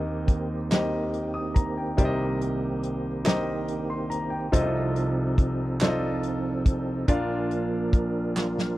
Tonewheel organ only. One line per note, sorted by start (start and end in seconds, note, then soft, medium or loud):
0.00 4.49 D#3 soft
0.00 4.50 A#3 soft
0.00 4.49 C4 soft
0.00 4.49 G4 medium
4.53 7.06 C3 medium
4.53 8.78 F3 soft
4.53 7.06 C4 soft
4.53 7.06 D#4 medium
4.53 7.06 A4 medium
7.07 8.78 A#3 medium
7.07 8.34 D4 medium
7.07 8.34 A#4 medium
8.35 8.78 D4 soft
8.35 8.78 F4 medium
8.35 8.78 A#4 medium